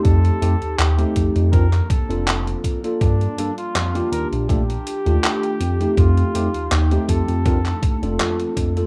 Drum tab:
HH |xxxxxxxxxxxxxxxx|xxxxxxxxxxxxxxxx|xxxxxxxxxxxxxxxx|
CP |----x----x--x---|----x-------x---|----x----x--x---|
BD |o-----o-o-o---o-|o-------o-------|o-----o-o-o---o-|